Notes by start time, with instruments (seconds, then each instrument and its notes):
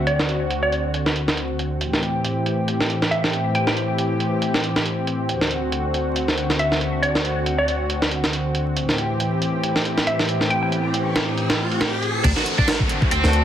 Already playing: analog synth pad D2 D3 C4 F#4
0.07 synth pluck D5, closed hi-hat
0.19 snare
0.29 closed hi-hat
0.51 closed hi-hat
0.63 synth pluck D5
0.72 closed hi-hat
0.94 closed hi-hat
1.06 snare
1.16 closed hi-hat
1.28 snare
1.37 closed hi-hat
1.59 closed hi-hat
1.81 analog synth pad A2 E3 C4 G4, closed hi-hat
1.93 snare
2.03 closed hi-hat
2.25 closed hi-hat
2.46 closed hi-hat
2.68 closed hi-hat
2.81 snare
2.90 closed hi-hat
3.02 snare
3.11 synth pluck E5, closed hi-hat
3.24 snare
3.33 closed hi-hat
3.55 synth pluck G5, closed hi-hat
3.67 synth pluck G5, snare
3.77 closed hi-hat
3.98 closed hi-hat
4.20 closed hi-hat
4.42 closed hi-hat
4.54 snare
4.64 closed hi-hat
4.76 snare
4.86 closed hi-hat
5.07 closed hi-hat
5.29 analog synth pad D2 D3 F#4, closed hi-hat
5.41 snare
5.51 closed hi-hat
5.72 closed hi-hat
5.94 closed hi-hat
6.16 closed hi-hat
6.28 snare
6.38 closed hi-hat
6.50 snare
6.59 synth pluck E5, closed hi-hat
6.72 snare
6.81 closed hi-hat
7.02 synth pluck D5, closed hi-hat
7.15 snare
7.25 closed hi-hat
7.46 closed hi-hat
7.58 synth pluck D5
7.68 closed hi-hat
7.90 closed hi-hat
8.02 snare
8.11 closed hi-hat
8.24 snare
8.33 closed hi-hat
8.55 closed hi-hat
8.77 analog synth pad A2 E3 C4 G4, closed hi-hat, riser
8.89 snare
8.98 closed hi-hat
9.20 closed hi-hat
9.42 closed hi-hat
9.63 closed hi-hat
9.76 snare
9.85 closed hi-hat
9.98 snare
10.07 synth pluck E5, closed hi-hat
10.19 snare
10.29 closed hi-hat
10.41 snare
10.50 synth pluck G5, closed hi-hat
10.63 synth pluck G5
10.72 closed hi-hat
10.94 closed hi-hat
11.16 snare, closed hi-hat
11.38 closed hi-hat
11.50 snare, closed hi-hat
11.72 closed hi-hat
11.81 snare, closed hi-hat
12.03 closed hi-hat
12.24 sub bass D2, analog synth pad D3 A3 C4 F#4, distorted electric guitar D4, kick, closed hi-hat, crash, downlifter
12.37 distorted electric guitar F#4, snare
12.46 closed hi-hat
12.58 distorted electric guitar D4, kick
12.68 snare, closed hi-hat
12.80 kick
12.89 closed hi-hat
13.02 kick
13.11 sub bass D2, distorted electric guitar C4, closed hi-hat
13.24 sub bass D2, string section C4 D4 F#4 A4, snare
13.33 closed hi-hat